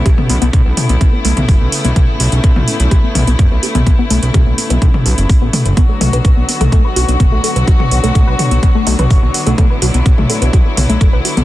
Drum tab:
HH |x-oxx-oxx-oxo-ox|x-oxx-oxx-oxx-ox|x-oxx-oxx-oxo-ox|x-oxx-oxx-oxx-ox|
T2 |-o----o----o----|o----o----o----o|----o----o----o-|--o----o----o---|
BD |o---o---o---o---|o---o---o---o---|o---o---o---o---|o---o---o---o---|

HH |x-oxx-oxx-oxo-ox|x-oxx-oxx-oxx-ox|
T2 |-o----o----o----|o----o----o----o|
BD |o---o---o---o---|o---o---o---o---|